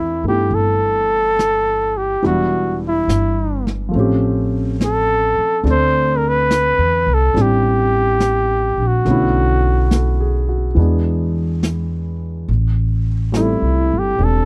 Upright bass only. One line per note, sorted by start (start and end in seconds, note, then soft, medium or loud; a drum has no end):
0.00 0.22 E2 soft
0.24 0.50 G2 medium
0.51 2.18 G1 medium
2.23 3.04 E1 medium
3.08 3.89 G1 medium
3.94 5.34 A1 medium
5.38 muted upright bass stroke soft
5.64 6.74 D2 medium
6.78 7.05 E2 medium
7.07 7.33 C2 medium
7.35 8.75 A1 medium
8.77 9.03 A#1 medium
9.06 10.73 B1 medium
10.76 12.44 E2 medium
12.48 13.59 A1 medium
13.62 13.89 C2 soft
13.92 14.18 G1 medium
14.19 14.45 E1 medium